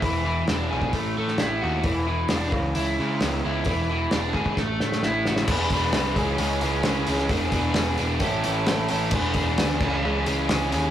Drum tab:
CC |----------------|----------------|----------------|x---------------|
HH |o---o---o---o---|o---o---o---o---|o---o-----------|--o-o-o-o-o-o-o-|
SD |----o------oo---|----o-------o---|----o---o-ooo-oo|----o-------o--o|
BD |o------oo-------|o-----o---------|o-----ooo-------|o-o---o---------|

CC |----------------|x-----x---------|
HH |o-o-o-o-o-o-o-o-|--o-o-----o-o-o-|
SD |----o-------o---|----o-------o---|
BD |o-o-----o-------|o-o---o---------|